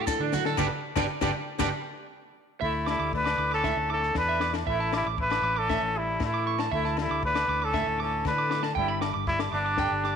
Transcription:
Already playing: A2 D3 A3 E4 A4
0.07 E3 A4, kick, snare, low agogo, maracas
0.20 D3 D4
0.32 F#3 F#4, snare, high conga, low conga, maracas
0.45 A4, snare, low agogo
0.57 G1 B3 D4 G4 B4 D5, kick, snare, low conga, low agogo, maracas
0.96 G1 B3 D4 G4 B4 D5, kick, snare, low conga, low agogo, maracas
1.21 G1 B3 D4 G4 B4 D5, kick, snare, low conga, low agogo, maracas
1.59 G1 B3 D4 G4 B4 D5, kick, snare, low conga, low agogo, maracas
2.61 D2 D3 A3 E4 E5, kick
2.86 G3 A3 E4 D6, snare, low agogo
2.99 D2 D6
3.13 A3 D4 B4, kick
3.26 D6, snare, low agogo
3.38 D2 E4 D6
3.52 C#4 A4 D6
3.64 A2 E4 E5, kick, snare, low agogo
3.76 D2
3.90 C#4 E4 A4 D6
4.03 snare
4.15 E2 D4 B4, kick, snare, low agogo
4.29 E5
4.40 B2 D6, snare
4.53 muted clean electric guitar stroke, snare, low agogo
4.66 A1 E3 A3 C#4 E4 E5, muted nylon-string guitar stroke, kick
4.80 A5
4.93 G3 C#4 E4 D6, snare, low agogo
5.06 A1 D6
5.18 E3 E4 B4, kick
5.30 D6, snare, low agogo
5.42 A1 C#4 D6
5.56 C#4 A4 D6
5.68 A2 E4 E5, kick, snare, low agogo
5.81 A1
5.96 G3 E4, muted nylon-string guitar stroke
6.20 A2 E3 A3, kick, snare, low agogo
6.25 E4
6.34 D6
6.47 C#4 C#6
6.59 A5, snare, low agogo
6.71 D2 D3 A3 E4 E5, kick
6.85 A5, snare
6.97 G3 A3 E4, snare, low agogo
7.10 D2 D6
7.23 D4 B4, muted nylon-string guitar stroke, kick
7.35 D6, snare, low agogo
7.48 D2 E4 D6
7.62 C#4 A4 D6
7.73 A2 E5, muted nylon-string guitar stroke, kick, snare, low agogo
7.87 D2
8.00 C#4 E4 A4 D6
8.25 D3 A3 D4 B4, kick, snare, low agogo
8.38 D6
8.51 E4 D6, snare
8.63 A5, snare, low agogo
8.75 G1 G2 G3 B3 D4 E4 G5, kick
8.88 B5
9.01 D4 D6, snare, low agogo
9.14 G1 D6
9.27 G3 E4, kick, snare
9.39 D6, snare, low agogo
9.52 G1 G3 B3 D4 D6
9.66 D6
9.77 D3 D4 G5, kick, snare, low agogo
9.91 G1
10.04 G4 D6, snare

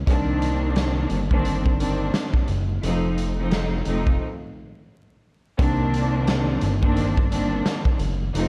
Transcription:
0.06 C2 D#3 A#3 C4 D4, kick, closed hi-hat
0.42 closed hi-hat
0.76 snare, closed hi-hat
1.10 G1, closed hi-hat
1.30 D#3 A#3 C4 D4, kick
1.45 closed hi-hat
1.66 kick
1.79 D#3 A#3 C4 D4, closed hi-hat
2.14 snare, closed hi-hat
2.34 kick
2.48 F#1, closed hi-hat
2.83 F1 F3 A3 C4 D#4, closed hi-hat
3.18 closed hi-hat
3.38 F3 A3 C4 D#4
3.51 snare, closed hi-hat
3.85 F1 F3 A3 C4 D#4, closed hi-hat
4.07 kick
5.58 C2 D#3 A#3 C4 D4, kick, closed hi-hat
5.94 closed hi-hat
6.27 snare, closed hi-hat
6.61 G1, closed hi-hat
6.82 D#3 A#3 C4 D4, kick
6.96 closed hi-hat
7.17 kick
7.31 D#3 A#3 C4 D4, closed hi-hat
7.66 snare, closed hi-hat
7.85 kick
7.99 F#1, closed hi-hat
8.35 F1 F3 A3 C4 D#4, closed hi-hat

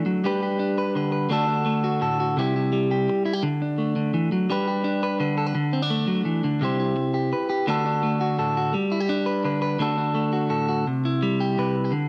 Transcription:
Already playing: A3 D4
0.06 F#3
0.24 G3 D4 G4 B4
0.43 G4
0.59 D4
0.78 B4
0.95 D3 B4
1.12 B4
1.29 D3 A3 D4 F#4 A4
1.48 D4
1.66 A3
1.84 F#4
2.01 A2 A4
2.20 F#4
2.37 C3 G3 E4 G4, muted clean electric guitar stroke
2.56 E4
2.73 G3
2.91 G4
3.10 muted clean electric guitar stroke
3.26 E4
3.33 G4
3.43 D3
3.62 D4
3.78 A3
3.96 D3
4.14 E3
4.32 F#3
4.50 G3 D4 G4 B4
4.68 G4
4.84 D4
5.03 B4
5.20 D3 B4
5.38 A4
5.46 B4
5.55 D3
5.73 C4
5.82 D4
5.90 A3
6.07 F#3
6.25 E3
6.44 D3
6.61 C3 G3 E4 G4 C5
6.79 E4
6.96 muted clean electric guitar stroke
7.14 G4
7.33 B4
7.49 G4
7.67 D3 A3 D4 F#4 A4
7.86 D4
8.03 A3
8.21 F#4
8.39 A2 A4
8.57 F#4
8.74 G3
8.92 E4
9.00 G4
9.09 D4
9.26 B4
9.44 D3 B4
9.62 B4
9.79 D3 A3 D4 F#4 A4
9.98 D4
10.14 A3
10.33 F#4
10.50 A2 A4
10.69 F#4
10.87 C3
11.05 E4
11.23 G3
11.41 G4
11.58 C3 B4
11.84 G4
11.92 D3

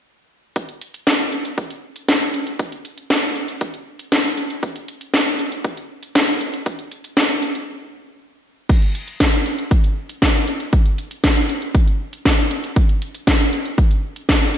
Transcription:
0.56 kick, closed hi-hat
0.69 closed hi-hat
0.81 closed hi-hat
0.94 closed hi-hat
1.07 kick, snare, closed hi-hat
1.20 closed hi-hat
1.32 closed hi-hat
1.45 closed hi-hat
1.58 kick, closed hi-hat
1.70 closed hi-hat
1.96 closed hi-hat
2.09 kick, snare, closed hi-hat
2.21 closed hi-hat
2.34 closed hi-hat
2.47 closed hi-hat
2.59 kick, closed hi-hat
2.72 closed hi-hat
2.85 closed hi-hat
2.98 closed hi-hat
3.10 kick, snare, closed hi-hat
3.23 closed hi-hat
3.36 closed hi-hat
3.48 closed hi-hat
3.61 kick, closed hi-hat
3.74 closed hi-hat
3.99 closed hi-hat
4.12 kick, snare, closed hi-hat
4.25 closed hi-hat
4.37 closed hi-hat
4.50 closed hi-hat
4.63 kick, closed hi-hat
4.76 closed hi-hat
4.88 closed hi-hat
5.01 closed hi-hat
5.14 kick, snare, closed hi-hat
5.26 closed hi-hat
5.39 closed hi-hat
5.52 closed hi-hat
5.64 kick, closed hi-hat
5.77 closed hi-hat
6.03 closed hi-hat
6.15 kick, snare, closed hi-hat
6.28 closed hi-hat
6.41 closed hi-hat
6.54 closed hi-hat
6.66 kick, closed hi-hat
6.79 closed hi-hat
6.92 closed hi-hat
7.04 closed hi-hat
7.17 kick, snare, closed hi-hat
7.30 closed hi-hat
7.42 closed hi-hat
7.55 closed hi-hat
8.69 kick, closed hi-hat, crash
8.82 closed hi-hat
8.95 closed hi-hat
9.08 closed hi-hat
9.20 kick, snare, closed hi-hat
9.33 closed hi-hat
9.46 closed hi-hat
9.59 closed hi-hat
9.71 kick, closed hi-hat
9.84 closed hi-hat
10.09 closed hi-hat
10.22 kick, snare, closed hi-hat
10.35 closed hi-hat
10.47 closed hi-hat
10.60 closed hi-hat
10.73 kick, closed hi-hat
10.86 closed hi-hat
10.98 closed hi-hat
11.11 closed hi-hat
11.24 kick, snare, closed hi-hat
11.37 closed hi-hat
11.49 closed hi-hat
11.62 closed hi-hat
11.75 kick, closed hi-hat
11.87 closed hi-hat
12.13 closed hi-hat
12.25 kick, snare, closed hi-hat
12.38 closed hi-hat
12.51 closed hi-hat
12.64 closed hi-hat
12.76 kick, closed hi-hat
12.89 closed hi-hat
13.02 closed hi-hat
13.15 closed hi-hat
13.27 kick, snare, closed hi-hat
13.40 closed hi-hat
13.53 closed hi-hat
13.65 closed hi-hat
13.78 kick, closed hi-hat
13.91 closed hi-hat
14.16 closed hi-hat
14.29 kick, snare, closed hi-hat
14.42 closed hi-hat
14.54 closed hi-hat

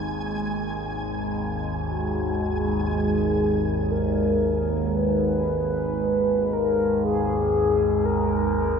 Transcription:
Already playing: G#1 D#2 G#3 D#4 G#4 G#5
1.82 F#4
2.88 G#1 D#2 G#4
3.91 A#4
4.96 B4
6.53 A#4
7.04 G#4
8.05 A#4

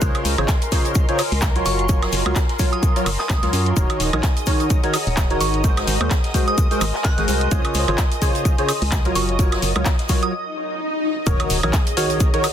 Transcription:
Already playing: A#4 D#5 G#5 C6
0.01 C#2 C#3 F4 G#4 C5 C#5, kick, closed hi-hat, shaker
0.15 closed hi-hat, high woodblock
0.25 C#2, open hi-hat, shaker
0.38 G#1 C#3 F4 G#4 C5 C#5, closed hi-hat, high woodblock
0.48 kick, snare, clap, closed hi-hat, shaker
0.62 closed hi-hat
0.72 C#3 F4 G#4 C5 C#5, kick, open hi-hat, shaker
0.85 closed hi-hat
0.95 kick, closed hi-hat, shaker
1.09 C#3 F4 G#4 C5 C#5, closed hi-hat
1.19 open hi-hat, high woodblock, shaker
1.32 C#2, open hi-hat
1.42 kick, snare, clap, closed hi-hat, shaker
1.56 F#3 F4 F#4 A#4 C#5, closed hi-hat
1.66 F#1 C#6, open hi-hat, shaker
1.79 closed hi-hat
1.89 F#3 F4 F#4 A#4 C#5, kick, closed hi-hat, shaker
2.02 snare, closed hi-hat, high woodblock
2.12 F#1, open hi-hat, shaker
2.26 C#2 F#3 F4 F#4 A#4 C#5, closed hi-hat, high woodblock
2.36 kick, snare, clap, closed hi-hat, shaker
2.49 snare, closed hi-hat
2.59 F#3 F4 F#4 A#4 C#5, kick, open hi-hat, shaker
2.72 D#6, closed hi-hat
2.83 kick, closed hi-hat, shaker
2.96 F#3 F4 F#4 A#4 C#5, closed hi-hat
3.06 F#1, open hi-hat, high woodblock, shaker
3.19 D#6, snare, clap
3.29 C#2, kick, snare, clap, closed hi-hat, shaker
3.42 C#2 F#3 F4 F#4 A#4 C#5, snare, closed hi-hat
3.53 F#2, open hi-hat, shaker
3.66 closed hi-hat
3.76 D#1 D#3 D#4 F#4 G#4 A#4 C#5 D#5 D#6, kick, closed hi-hat, shaker
3.90 closed hi-hat, high woodblock
4.00 D#1 C#5, open hi-hat, shaker
4.13 A#1 D#3 D#4 F#4 A#4 C#5, closed hi-hat, high woodblock
4.18 F#5
4.23 kick, snare, clap, closed hi-hat, shaker
4.37 closed hi-hat
4.46 D#3 D#4 F#4 A#4 C#5, kick, open hi-hat, shaker
4.60 A#5, closed hi-hat
4.70 kick, closed hi-hat, shaker
4.84 D#3 D#4 F#4 A#4 C#5, closed hi-hat
4.94 open hi-hat, high woodblock, shaker
5.07 D#1, open hi-hat
5.17 kick, snare, clap, closed hi-hat, shaker
5.30 D#3 D#4 F#4 A#4 C#5, closed hi-hat
5.41 G#1 C#6, open hi-hat, shaker
5.54 closed hi-hat
5.64 G#3 F#4 G#4 A#4 C5, kick, closed hi-hat, shaker
5.72 D#5
5.77 snare, closed hi-hat, high woodblock
5.87 G#1 G#5, open hi-hat, shaker
6.01 D#2 G#3 F#4 G#4 A#4 C5, closed hi-hat, high woodblock
6.10 kick, snare, clap, closed hi-hat, shaker
6.17 C6
6.24 snare, closed hi-hat
6.34 G#3 F#4 G#4 A#4 C5, kick, open hi-hat, shaker
6.48 D#6, closed hi-hat
6.58 kick, closed hi-hat, shaker
6.71 G#3 F#4 G#4 A#4 C5, closed hi-hat
6.81 G#1, open hi-hat, high woodblock, shaker
6.94 snare, clap
7.04 F#6, kick, snare, clap, closed hi-hat, shaker
7.18 G#1 G#3 F#4 G#4 A#4 C5, snare, closed hi-hat
7.28 C2, open hi-hat, shaker
7.41 closed hi-hat
7.51 C#2 C#3 F4 G#4 C5 C#5, kick, closed hi-hat, shaker
7.65 closed hi-hat, high woodblock
7.74 C#2, open hi-hat, shaker
7.88 G#1 C#3 F4 G#4 C5 C#5, closed hi-hat, high woodblock
7.98 kick, snare, clap, closed hi-hat, shaker
8.12 closed hi-hat
8.22 C#3 F4 G#4 C5 C#5, kick, open hi-hat, shaker
8.35 closed hi-hat
8.45 kick, closed hi-hat, shaker
8.58 C#3 F4 G#4 C5 C#5, closed hi-hat
8.69 open hi-hat, high woodblock, shaker
8.82 C#2, open hi-hat
8.92 kick, snare, clap, closed hi-hat, shaker
9.05 F#3 F4 F#4 A#4 C#5, closed hi-hat
9.15 F#1 C#6, open hi-hat, shaker
9.29 closed hi-hat
9.39 F#3 F4 F#4 A#4 C#5, kick, closed hi-hat, shaker
9.52 snare, closed hi-hat, high woodblock
9.62 F#1, open hi-hat, shaker
9.76 C#2 F#3 F4 F#4 A#4 C#5, closed hi-hat, high woodblock
9.85 kick, snare, clap, closed hi-hat, shaker
9.99 snare, closed hi-hat
10.09 F#3 F4 F#4 A#4 C#5, kick, open hi-hat, shaker
10.23 D#6, closed hi-hat
10.33 swell
11.27 D#1 D#3 D#4 F#4 G#4 A#4 C#5 D#5 D#6, kick, closed hi-hat, impact, shaker
11.40 C#5, closed hi-hat, high woodblock
11.50 D#1, open hi-hat, shaker
11.63 A#1 D#3 D#4 F#4 A#4 C#5, closed hi-hat, high woodblock
11.71 F#5, kick, snare, clap, closed hi-hat, shaker
11.87 closed hi-hat
11.97 D#3 D#4 F#4 A#4 C#5, open hi-hat, shaker
12.10 A#5, closed hi-hat
12.20 kick, closed hi-hat, shaker
12.34 D#3 D#4 F#4 A#4 C#5, closed hi-hat
12.44 open hi-hat, high woodblock, shaker

